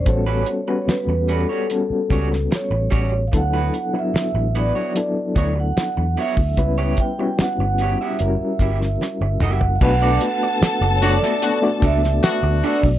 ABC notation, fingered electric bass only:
X:1
M:4/4
L:1/16
Q:1/4=74
K:Bm
V:1 name="Fingered electric bass" clef=bass
A,,,2 z3 E,,2 z3 C,,2 z A,,, A,,,2 | D,,2 z3 A,,,2 z3 D,,2 z E,, z D,, | C,,2 z3 G,,,2 z F,,, z G,,,2 z G,,, F,,,2 | B,,,2 z3 F,,,2 z3 C,,2 z D,, z B,,, |]